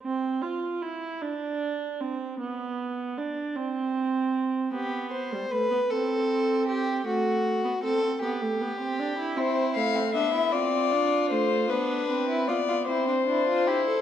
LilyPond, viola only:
\new Staff \with { instrumentName = "Viola" } { \time 6/8 \key c \major \tempo 4. = 51 c'8 f'8 e'8 d'4 c'8 | b4 d'8 c'4. | b8. g16 a16 b16 c'4. | a8. b16 c'16 c'16 b16 a16 b16 c'16 d'16 e'16 |
c'8 a8 b8 c'8 d'8 a8 | b8 c'8 b8 c'8 d'8 e'8 | }